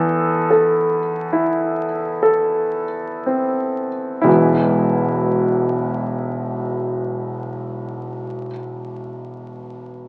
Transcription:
Already playing: E2 E3 A4
0.50 A4
1.33 E4
2.23 A4
3.26 C4
4.21 E1 B1 E3 G#3 B3 E4

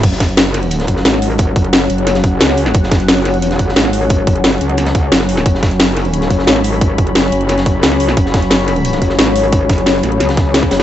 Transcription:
0.03 F#1 F#3 C#4 C#5 F#5, kick, closed hi-hat, crash
0.12 snare
0.20 kick, snare, closed hi-hat
0.29 closed hi-hat
0.37 snare, closed hi-hat
0.54 snare, closed hi-hat, open hi-hat
0.63 closed hi-hat
0.71 closed hi-hat
0.79 snare, closed hi-hat
0.87 F#1, kick, closed hi-hat
0.96 snare
1.05 G#1, snare, closed hi-hat
1.14 snare
1.22 closed hi-hat, open hi-hat
1.31 closed hi-hat
1.38 kick, closed hi-hat
1.56 F#1, kick, closed hi-hat
1.64 closed hi-hat
1.73 snare, closed hi-hat
1.90 F#1, closed hi-hat
1.98 closed hi-hat
2.07 snare, closed hi-hat
2.15 snare, closed hi-hat
2.24 kick, closed hi-hat
2.40 C#2, snare, closed hi-hat
2.49 snare
2.57 closed hi-hat, open hi-hat
2.66 snare
2.74 F#1, kick, closed hi-hat
2.83 snare
2.91 kick, snare, closed hi-hat
3.00 closed hi-hat
3.08 snare, closed hi-hat
3.25 snare, closed hi-hat, open hi-hat
3.34 F1, closed hi-hat
3.42 closed hi-hat
3.51 snare, closed hi-hat
3.59 F#1, kick, closed hi-hat
3.69 snare
3.76 G#1, snare, closed hi-hat
3.85 snare
3.93 closed hi-hat, open hi-hat
4.02 closed hi-hat
4.09 kick, closed hi-hat
4.27 F#1, kick, closed hi-hat
4.36 closed hi-hat
4.44 snare, closed hi-hat
4.61 C#2, closed hi-hat
4.69 closed hi-hat
4.77 snare, closed hi-hat
4.86 snare, closed hi-hat
4.95 kick, closed hi-hat
5.12 F#1, snare, closed hi-hat
5.20 snare
5.29 closed hi-hat, open hi-hat
5.37 snare
5.46 F#1 B5, kick, closed hi-hat
5.55 snare
5.63 kick, snare, closed hi-hat
5.71 closed hi-hat
5.80 snare, closed hi-hat
5.97 snare, closed hi-hat, open hi-hat
6.05 closed hi-hat
6.13 closed hi-hat
6.22 snare, closed hi-hat
6.30 F#1, kick, closed hi-hat
6.39 snare
6.47 G#1, snare, closed hi-hat
6.56 snare
6.64 closed hi-hat, open hi-hat
6.73 closed hi-hat
6.81 kick, closed hi-hat
6.98 F#1, kick, closed hi-hat
7.07 closed hi-hat
7.15 snare, closed hi-hat
7.32 F#1, closed hi-hat
7.41 closed hi-hat
7.49 snare, closed hi-hat
7.58 snare, closed hi-hat
7.66 kick, closed hi-hat
7.83 C#2, snare, closed hi-hat
7.91 snare
8.00 closed hi-hat, open hi-hat
8.09 snare
8.17 F#1, kick, closed hi-hat
8.26 snare
8.34 kick, snare, closed hi-hat
8.42 closed hi-hat
8.50 snare, closed hi-hat
8.68 snare, closed hi-hat, open hi-hat
8.76 closed hi-hat
8.85 closed hi-hat
8.92 snare, closed hi-hat
9.02 F#1, kick, closed hi-hat
9.09 snare
9.19 G#1, snare, closed hi-hat
9.27 snare
9.36 closed hi-hat, open hi-hat
9.43 closed hi-hat
9.52 kick, closed hi-hat
9.69 F#1, kick, snare, closed hi-hat
9.78 closed hi-hat
9.86 snare, closed hi-hat
10.03 A1, snare, closed hi-hat
10.12 closed hi-hat
10.20 C#2, snare, closed hi-hat
10.29 snare, closed hi-hat
10.37 kick, snare, closed hi-hat
10.54 snare, closed hi-hat
10.63 kick, snare
10.71 F#1, snare, closed hi-hat, open hi-hat
10.80 snare, closed hi-hat

